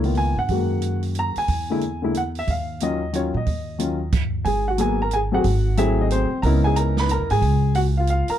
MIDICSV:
0, 0, Header, 1, 5, 480
1, 0, Start_track
1, 0, Key_signature, -6, "minor"
1, 0, Tempo, 329852
1, 717, Time_signature, 3, 2, 24, 8
1, 6486, Key_signature, 5, "minor"
1, 12203, End_track
2, 0, Start_track
2, 0, Title_t, "Grand piano"
2, 0, Program_c, 0, 0
2, 59, Note_on_c, 0, 51, 50
2, 61, Note_on_c, 0, 58, 44
2, 79, Note_on_c, 0, 59, 45
2, 80, Note_on_c, 0, 65, 52
2, 255, Note_on_c, 0, 80, 88
2, 479, Note_off_c, 0, 51, 0
2, 480, Note_off_c, 0, 58, 0
2, 489, Note_off_c, 0, 59, 0
2, 489, Note_off_c, 0, 65, 0
2, 527, Note_off_c, 0, 80, 0
2, 562, Note_on_c, 0, 78, 79
2, 730, Note_on_c, 0, 56, 47
2, 732, Note_on_c, 0, 51, 49
2, 748, Note_on_c, 0, 66, 55
2, 749, Note_on_c, 0, 58, 48
2, 1454, Note_off_c, 0, 78, 0
2, 1731, Note_on_c, 0, 82, 97
2, 1988, Note_off_c, 0, 82, 0
2, 2009, Note_on_c, 0, 80, 91
2, 2059, Note_off_c, 0, 56, 0
2, 2060, Note_off_c, 0, 51, 0
2, 2068, Note_off_c, 0, 58, 0
2, 2068, Note_off_c, 0, 66, 0
2, 2475, Note_on_c, 0, 50, 62
2, 2483, Note_on_c, 0, 56, 55
2, 2490, Note_on_c, 0, 58, 55
2, 2497, Note_on_c, 0, 64, 63
2, 2630, Note_off_c, 0, 50, 0
2, 2634, Note_off_c, 0, 56, 0
2, 2637, Note_off_c, 0, 58, 0
2, 2641, Note_off_c, 0, 64, 0
2, 2898, Note_off_c, 0, 80, 0
2, 2938, Note_on_c, 0, 50, 54
2, 2956, Note_on_c, 0, 56, 50
2, 2960, Note_on_c, 0, 58, 50
2, 2973, Note_on_c, 0, 64, 66
2, 3102, Note_off_c, 0, 50, 0
2, 3111, Note_off_c, 0, 56, 0
2, 3113, Note_off_c, 0, 58, 0
2, 3120, Note_off_c, 0, 64, 0
2, 3162, Note_on_c, 0, 78, 82
2, 3235, Note_off_c, 0, 78, 0
2, 3475, Note_on_c, 0, 76, 82
2, 3633, Note_off_c, 0, 76, 0
2, 3643, Note_on_c, 0, 77, 78
2, 4071, Note_off_c, 0, 77, 0
2, 4096, Note_on_c, 0, 51, 53
2, 4101, Note_on_c, 0, 54, 51
2, 4107, Note_on_c, 0, 61, 51
2, 4113, Note_on_c, 0, 65, 61
2, 4118, Note_on_c, 0, 75, 83
2, 4361, Note_off_c, 0, 51, 0
2, 4364, Note_off_c, 0, 54, 0
2, 4366, Note_off_c, 0, 61, 0
2, 4370, Note_off_c, 0, 65, 0
2, 4549, Note_off_c, 0, 75, 0
2, 4554, Note_on_c, 0, 51, 55
2, 4564, Note_on_c, 0, 54, 44
2, 4572, Note_on_c, 0, 61, 46
2, 4577, Note_on_c, 0, 65, 62
2, 4591, Note_on_c, 0, 73, 78
2, 4663, Note_off_c, 0, 73, 0
2, 4830, Note_off_c, 0, 51, 0
2, 4835, Note_off_c, 0, 54, 0
2, 4839, Note_off_c, 0, 61, 0
2, 4842, Note_off_c, 0, 65, 0
2, 4903, Note_on_c, 0, 75, 69
2, 5507, Note_on_c, 0, 51, 55
2, 5519, Note_on_c, 0, 61, 45
2, 5520, Note_on_c, 0, 54, 48
2, 5523, Note_on_c, 0, 65, 57
2, 5787, Note_off_c, 0, 51, 0
2, 5793, Note_off_c, 0, 54, 0
2, 5793, Note_off_c, 0, 61, 0
2, 5795, Note_off_c, 0, 65, 0
2, 5966, Note_off_c, 0, 75, 0
2, 6470, Note_on_c, 0, 80, 81
2, 6509, Note_on_c, 0, 68, 65
2, 6757, Note_off_c, 0, 80, 0
2, 6778, Note_off_c, 0, 68, 0
2, 6809, Note_on_c, 0, 78, 71
2, 6842, Note_on_c, 0, 66, 64
2, 6953, Note_on_c, 0, 54, 67
2, 6963, Note_on_c, 0, 58, 56
2, 6965, Note_on_c, 0, 59, 54
2, 6975, Note_on_c, 0, 68, 66
2, 6982, Note_off_c, 0, 66, 0
2, 6982, Note_off_c, 0, 78, 0
2, 6996, Note_on_c, 0, 80, 85
2, 6998, Note_off_c, 0, 68, 0
2, 7020, Note_on_c, 0, 68, 57
2, 7229, Note_off_c, 0, 54, 0
2, 7234, Note_off_c, 0, 58, 0
2, 7235, Note_off_c, 0, 59, 0
2, 7274, Note_off_c, 0, 68, 0
2, 7290, Note_off_c, 0, 80, 0
2, 7303, Note_on_c, 0, 82, 86
2, 7334, Note_on_c, 0, 70, 59
2, 7468, Note_off_c, 0, 70, 0
2, 7468, Note_off_c, 0, 82, 0
2, 7473, Note_on_c, 0, 80, 89
2, 7506, Note_on_c, 0, 68, 69
2, 7545, Note_off_c, 0, 80, 0
2, 7579, Note_off_c, 0, 68, 0
2, 7736, Note_on_c, 0, 54, 63
2, 7745, Note_on_c, 0, 57, 58
2, 7751, Note_on_c, 0, 60, 62
2, 7765, Note_on_c, 0, 68, 70
2, 7777, Note_on_c, 0, 78, 82
2, 7816, Note_on_c, 0, 66, 67
2, 7902, Note_off_c, 0, 54, 0
2, 7906, Note_off_c, 0, 57, 0
2, 7909, Note_off_c, 0, 60, 0
2, 7916, Note_off_c, 0, 68, 0
2, 8374, Note_off_c, 0, 78, 0
2, 8395, Note_off_c, 0, 66, 0
2, 8400, Note_on_c, 0, 54, 77
2, 8410, Note_on_c, 0, 57, 74
2, 8411, Note_on_c, 0, 76, 87
2, 8417, Note_on_c, 0, 60, 69
2, 8426, Note_on_c, 0, 68, 88
2, 8448, Note_on_c, 0, 64, 58
2, 8687, Note_off_c, 0, 76, 0
2, 8706, Note_off_c, 0, 64, 0
2, 8747, Note_on_c, 0, 75, 75
2, 8782, Note_on_c, 0, 63, 58
2, 8817, Note_off_c, 0, 75, 0
2, 8845, Note_off_c, 0, 63, 0
2, 8904, Note_on_c, 0, 72, 85
2, 8915, Note_off_c, 0, 60, 0
2, 8937, Note_on_c, 0, 60, 63
2, 9121, Note_off_c, 0, 54, 0
2, 9126, Note_off_c, 0, 57, 0
2, 9134, Note_off_c, 0, 68, 0
2, 9256, Note_off_c, 0, 72, 0
2, 9274, Note_off_c, 0, 60, 0
2, 9347, Note_on_c, 0, 82, 89
2, 9377, Note_on_c, 0, 70, 74
2, 9380, Note_on_c, 0, 63, 69
2, 9389, Note_on_c, 0, 59, 63
2, 9397, Note_on_c, 0, 61, 59
2, 9405, Note_on_c, 0, 64, 69
2, 9649, Note_off_c, 0, 70, 0
2, 9664, Note_off_c, 0, 82, 0
2, 9666, Note_on_c, 0, 80, 95
2, 9702, Note_on_c, 0, 68, 69
2, 9830, Note_off_c, 0, 80, 0
2, 9838, Note_on_c, 0, 82, 92
2, 9849, Note_off_c, 0, 68, 0
2, 9880, Note_on_c, 0, 70, 64
2, 10141, Note_off_c, 0, 70, 0
2, 10149, Note_off_c, 0, 82, 0
2, 10179, Note_on_c, 0, 83, 92
2, 10207, Note_on_c, 0, 71, 59
2, 10343, Note_off_c, 0, 71, 0
2, 10343, Note_off_c, 0, 83, 0
2, 10349, Note_on_c, 0, 82, 90
2, 10374, Note_on_c, 0, 70, 71
2, 10628, Note_off_c, 0, 70, 0
2, 10634, Note_on_c, 0, 80, 92
2, 10643, Note_off_c, 0, 82, 0
2, 10654, Note_on_c, 0, 68, 72
2, 10701, Note_off_c, 0, 63, 0
2, 10705, Note_off_c, 0, 59, 0
2, 10709, Note_off_c, 0, 61, 0
2, 10713, Note_off_c, 0, 64, 0
2, 11250, Note_off_c, 0, 68, 0
2, 11284, Note_on_c, 0, 78, 91
2, 11302, Note_on_c, 0, 66, 68
2, 11305, Note_off_c, 0, 80, 0
2, 11357, Note_off_c, 0, 78, 0
2, 11375, Note_off_c, 0, 66, 0
2, 11603, Note_on_c, 0, 77, 74
2, 11637, Note_on_c, 0, 65, 62
2, 11766, Note_off_c, 0, 77, 0
2, 11776, Note_off_c, 0, 65, 0
2, 11788, Note_on_c, 0, 77, 96
2, 11799, Note_on_c, 0, 65, 64
2, 12060, Note_off_c, 0, 65, 0
2, 12073, Note_on_c, 0, 82, 89
2, 12082, Note_off_c, 0, 77, 0
2, 12094, Note_on_c, 0, 70, 70
2, 12146, Note_off_c, 0, 82, 0
2, 12166, Note_off_c, 0, 70, 0
2, 12203, End_track
3, 0, Start_track
3, 0, Title_t, "Upright bass"
3, 0, Program_c, 1, 32
3, 0, Note_on_c, 1, 37, 76
3, 482, Note_off_c, 1, 37, 0
3, 529, Note_on_c, 1, 43, 64
3, 701, Note_off_c, 1, 43, 0
3, 709, Note_on_c, 1, 42, 66
3, 1918, Note_off_c, 1, 42, 0
3, 2156, Note_on_c, 1, 40, 72
3, 3542, Note_off_c, 1, 40, 0
3, 3599, Note_on_c, 1, 39, 68
3, 4805, Note_off_c, 1, 39, 0
3, 4863, Note_on_c, 1, 46, 69
3, 5031, Note_off_c, 1, 46, 0
3, 5042, Note_on_c, 1, 39, 70
3, 6426, Note_off_c, 1, 39, 0
3, 6480, Note_on_c, 1, 32, 76
3, 7863, Note_off_c, 1, 32, 0
3, 7924, Note_on_c, 1, 32, 72
3, 9124, Note_off_c, 1, 32, 0
3, 9362, Note_on_c, 1, 37, 82
3, 10421, Note_off_c, 1, 37, 0
3, 10469, Note_on_c, 1, 40, 54
3, 10623, Note_off_c, 1, 40, 0
3, 10635, Note_on_c, 1, 44, 71
3, 10785, Note_off_c, 1, 44, 0
3, 10797, Note_on_c, 1, 37, 81
3, 11999, Note_off_c, 1, 37, 0
3, 12203, End_track
4, 0, Start_track
4, 0, Title_t, "Muted upright bass strokes"
4, 1987, Note_on_c, 9, 29, 37
4, 2133, Note_off_c, 9, 29, 0
4, 9177, Note_on_c, 9, 29, 41
4, 9323, Note_off_c, 9, 29, 0
4, 12056, Note_on_c, 9, 29, 36
4, 12201, Note_off_c, 9, 29, 0
4, 12203, End_track
5, 0, Start_track
5, 0, Title_t, "Drums"
5, 52, Note_on_c, 9, 46, 33
5, 198, Note_off_c, 9, 46, 0
5, 216, Note_on_c, 9, 46, 35
5, 362, Note_off_c, 9, 46, 0
5, 704, Note_on_c, 9, 46, 35
5, 711, Note_on_c, 9, 36, 29
5, 849, Note_off_c, 9, 46, 0
5, 857, Note_off_c, 9, 36, 0
5, 1187, Note_on_c, 9, 42, 45
5, 1333, Note_off_c, 9, 42, 0
5, 1492, Note_on_c, 9, 46, 31
5, 1637, Note_off_c, 9, 46, 0
5, 1670, Note_on_c, 9, 42, 40
5, 1816, Note_off_c, 9, 42, 0
5, 1972, Note_on_c, 9, 46, 35
5, 2118, Note_off_c, 9, 46, 0
5, 2153, Note_on_c, 9, 46, 38
5, 2160, Note_on_c, 9, 36, 28
5, 2299, Note_off_c, 9, 46, 0
5, 2306, Note_off_c, 9, 36, 0
5, 2638, Note_on_c, 9, 42, 44
5, 2783, Note_off_c, 9, 42, 0
5, 3120, Note_on_c, 9, 42, 41
5, 3265, Note_off_c, 9, 42, 0
5, 3419, Note_on_c, 9, 46, 32
5, 3564, Note_off_c, 9, 46, 0
5, 3600, Note_on_c, 9, 46, 39
5, 3607, Note_on_c, 9, 36, 30
5, 3746, Note_off_c, 9, 46, 0
5, 3752, Note_off_c, 9, 36, 0
5, 4077, Note_on_c, 9, 42, 51
5, 4223, Note_off_c, 9, 42, 0
5, 4561, Note_on_c, 9, 42, 44
5, 4706, Note_off_c, 9, 42, 0
5, 5040, Note_on_c, 9, 46, 37
5, 5046, Note_on_c, 9, 36, 29
5, 5186, Note_off_c, 9, 46, 0
5, 5191, Note_off_c, 9, 36, 0
5, 5521, Note_on_c, 9, 42, 50
5, 5666, Note_off_c, 9, 42, 0
5, 6000, Note_on_c, 9, 42, 41
5, 6005, Note_on_c, 9, 36, 65
5, 6006, Note_on_c, 9, 49, 56
5, 6146, Note_off_c, 9, 42, 0
5, 6151, Note_off_c, 9, 36, 0
5, 6151, Note_off_c, 9, 49, 0
5, 6480, Note_on_c, 9, 46, 43
5, 6484, Note_on_c, 9, 36, 29
5, 6625, Note_off_c, 9, 46, 0
5, 6629, Note_off_c, 9, 36, 0
5, 6956, Note_on_c, 9, 42, 58
5, 7101, Note_off_c, 9, 42, 0
5, 7434, Note_on_c, 9, 42, 47
5, 7580, Note_off_c, 9, 42, 0
5, 7916, Note_on_c, 9, 46, 46
5, 7920, Note_on_c, 9, 36, 31
5, 8062, Note_off_c, 9, 46, 0
5, 8066, Note_off_c, 9, 36, 0
5, 8400, Note_on_c, 9, 42, 55
5, 8546, Note_off_c, 9, 42, 0
5, 8883, Note_on_c, 9, 42, 51
5, 9029, Note_off_c, 9, 42, 0
5, 9359, Note_on_c, 9, 36, 32
5, 9359, Note_on_c, 9, 46, 43
5, 9504, Note_off_c, 9, 46, 0
5, 9505, Note_off_c, 9, 36, 0
5, 9839, Note_on_c, 9, 42, 57
5, 9984, Note_off_c, 9, 42, 0
5, 10142, Note_on_c, 9, 38, 63
5, 10288, Note_off_c, 9, 38, 0
5, 10317, Note_on_c, 9, 42, 49
5, 10462, Note_off_c, 9, 42, 0
5, 10620, Note_on_c, 9, 46, 41
5, 10766, Note_off_c, 9, 46, 0
5, 10795, Note_on_c, 9, 36, 33
5, 10799, Note_on_c, 9, 46, 45
5, 10940, Note_off_c, 9, 36, 0
5, 10945, Note_off_c, 9, 46, 0
5, 11271, Note_on_c, 9, 46, 45
5, 11417, Note_off_c, 9, 46, 0
5, 11745, Note_on_c, 9, 42, 46
5, 11891, Note_off_c, 9, 42, 0
5, 12047, Note_on_c, 9, 46, 41
5, 12192, Note_off_c, 9, 46, 0
5, 12203, End_track
0, 0, End_of_file